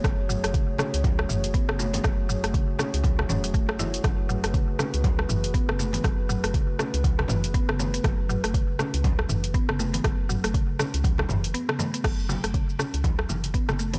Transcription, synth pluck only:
X:1
M:4/4
L:1/16
Q:"Swing 16ths" 1/4=120
K:F#m
V:1 name="Synth pluck" clef=bass
F, z F, A, C, z C z F, z E, z B, C, A, B, | F, z F, A, C, z C z F, z C F, A, z E z | F, z F, A, C, z C z F, z E, z B, C, A, B, | F, z F, A, C, z C z F, z E, z B, C, A, B, |
F, z F, A, C, z C z F, z E, z B, C, A, B, | F, z F, A, C, z C z F, z E, z B, C, A, B, | F, z F, A, C, z C z F, z E, z B, C, A, B, |]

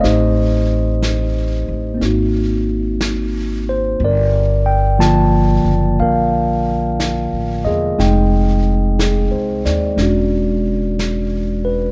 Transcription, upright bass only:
X:1
M:4/4
L:1/8
Q:"Swing" 1/4=60
K:Gm
V:1 name="Upright bass" clef=bass
A,,,3 A,,, _A,,,4 | G,,,3 _G,,, B,,,2- (3B,,, A,,, =E,,, | F,,,2- (3F,,, C,, E,, =E,,,4 |]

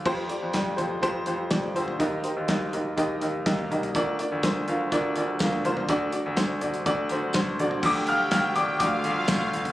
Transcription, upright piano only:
X:1
M:4/4
L:1/8
Q:1/4=124
K:Dphr
V:1 name="Upright piano"
[FGAc] [FGAd] [FGAd] [FGAc] [FGAc] [FGAc] [FGAd] [FGAc] | [EGBe] [EGBc] [EGBe] [EGBe] [EGBe] [EGBe] [EGBe] [EGBe] | [DFBd] [DFBd] [DFBc] [DFBf] [DFBd] [DFBd] [DFBf] [DFBc] | [D^FAd] [DFAd] [DFAc] [DFAd] [DFAd] [DFAc] [DFAc] [DFAd] |
[dd'] [ff'] [ff'] [dd'] [dd']3 z |]
V:2 name="Upright piano" clef=bass
z8 | E,3 z4 z | D,3 z4 z | D,3 z4 z |
[D,F,A,] z3 [D,F,A,] z3 |]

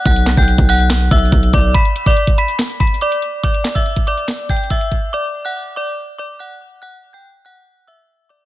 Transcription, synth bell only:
X:1
M:4/4
L:1/16
Q:1/4=142
K:G
V:1 name="Synth bell"
[ff']3 [gg'] z2 [ff']4 [ee']4 [dd']2 | [bb']3 [dd'] z2 [bb']2 z2 [bb']2 [dd']4 | [dd']3 [ee'] z2 [dd']4 [gg']2 [ee']4 | [dd']3 [ff'] z2 [dd']2 z2 [dd']2 [ff']4 |
[ff']3 [gg'] z2 [ff']4 [ee']4 [dd']2 |]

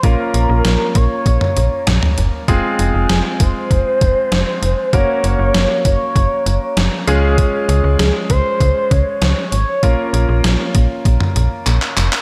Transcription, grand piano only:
X:1
M:4/4
L:1/8
Q:1/4=98
K:Bbm
V:1 name="Grand piano"
[B,DFB]8 | [A,CFA]8 | [B,DGB]6- [B,DGB] [A,DFA]- | [A,DFA]6- [A,DFA] z |
[B,DFB]8 |]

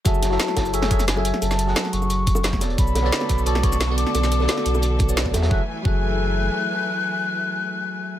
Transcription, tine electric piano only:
X:1
M:4/4
L:1/16
Q:1/4=176
K:F#m
V:1 name="Tine electric piano"
[F,FGAe]3 [F,EFAe]4- [F,EFAe] [F,FGAe]2 [F,FGAe] z2 [F,FGAe]3- | [F,FGAe]3 [F,FGAf]8- [F,FGAf]3 [B,FAcd]2- | [B,FAcd]3 [B,FAcd]4- [B,FAcd] [B,FAcd]2 [B,FAcd] z2 [B,FABd]3- | [B,FABd]3 [B,FABd]8 [B,FAcd]3 [F,FGAe]2 |
[F,FGAe] z3 [F,FGAe]12- | [F,FGAe]16 |]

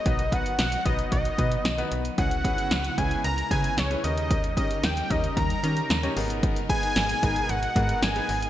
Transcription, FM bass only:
X:1
M:4/4
L:1/8
Q:1/4=113
K:C#dor
V:1 name="FM bass" clef=bass
B,,,2 B,,, B,,, B,,, B,, B,,, B,,, | C,,2 C,, C,, C,, C, C,, D,,- | D,,2 D,, D,, D,, D, D,, G,,,- | G,,,2 G,,, G,,, G,,, G,, G,,, G,,, |]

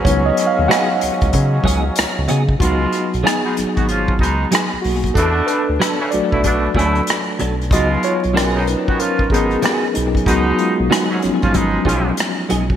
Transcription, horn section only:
X:1
M:4/4
L:1/16
Q:"Swing 16ths" 1/4=94
K:Dbmix
V:1 name="Horn section"
[A,,G,D]12- [A,,G,D]2 z2 | [C,A,F]3 z2 [C,A,E] z [E,CG] [F,DF]2 [C,A,E]2 z4 | [=B,,=A,=D]3 z2 [_D,A,_D] z [B,,A,=E] [B,,A,=D]2 [B,,A,E]2 z4 | [C,A,F]3 z2 [C,A,E] z [E,CG] [F,DF]2 [C,A,E]2 z4 |
[C,A,E]3 z2 [A,,G,D] z [F,DF] [C,A,E]2 [F,DF]2 z4 |]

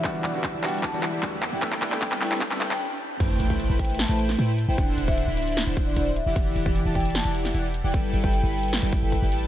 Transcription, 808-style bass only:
X:1
M:4/4
L:1/16
Q:1/4=152
K:G
V:1 name="808-style bass" clef=bass
E,,,2 E,,,3 E,,,4 E,,,3 E,,3 E,, | G,,,2 G,,,3 G,,,4 G,,,2 G,,, z4 | A,,,2 A,,,3 A,,,4 A,,,3 A,,3 A,,, | z2 D,,,3 D,,,4 D,,,3 D,,,3 E,,, |
E,,,2 E,,,3 E,,,4 E,,,3 E,,,3 E,,, | G,,,2 G,,,3 G,,,4 G,,,2 G,,,2 G,,, A,,,2 |]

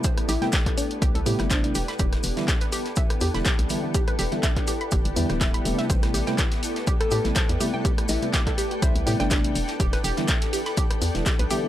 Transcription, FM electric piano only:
X:1
M:4/4
L:1/16
Q:"Swing 16ths" 1/4=123
K:Am
V:1 name="FM electric piano" clef=bass
z3 [C,G,A,B,E] z6 [C,G,A,B,E] [C,G,A,B,E]3 z2 | z3 [D,E,G,B,E] z6 z [D,E,G,B,E] z2 [D,E,G,B,E] [D,E,G,B,E] | z3 [D,E,G,B,E] z6 [D,E,G,B,E] [D,E,G,B,E]3 [C,G,A,B,E]2- | [C,G,A,B,E]3 [C,G,A,B,E] z6 z [C,G,A,B,E] z2 [C,G,A,B,E] [C,G,A,B,E] |
z3 [C,G,A,B,E] z6 [C,G,A,B,E] [C,G,A,B,E]3 z2 | z3 [D,E,G,B,E] z6 z [D,E,G,B,E] z2 [D,E,G,B,E] [D,E,G,B,E] |]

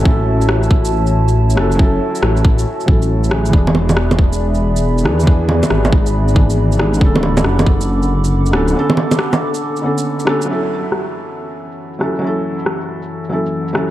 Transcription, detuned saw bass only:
X:1
M:4/4
L:1/8
Q:"Swing 16ths" 1/4=138
K:F#m
V:1 name="Detuned saw bass" clef=bass
A,,,2 A,,,4- A,,, F,,,- | F,,, z A,,,2 z A,,,3 | E,,,6- E,,, E,,- | E,, z G,,,6 |
D,,,2 F,,,4- F,,, D,,, | z8 | z8 | z8 |]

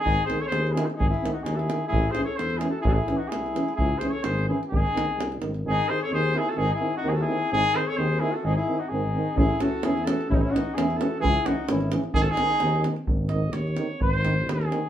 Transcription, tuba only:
X:1
M:2/4
L:1/8
Q:"Swing 16ths" 1/4=129
K:none
V:1 name="Tuba" clef=bass
^G,,, z ^D,,2 | ^G,,, z ^D,,2 | A,,, z E,,2 | A,,, z ^B,,,2 |
^C,, z ^G,,,2 | ^G,,, z ^B,,, G,,, | ^G,,, z ^D,,2 | ^G,,, z ^D,,2 |
^G,,, z ^D,,2 | ^G,,, z G,,,2 | A,,, z E,,2 | A,,, z E,,2 |
^C,, z ^G,,,2 | ^G,,, z ^D,,2 | ^G,,,2 ^D,,2 | ^G,,,2 ^D,,2 |]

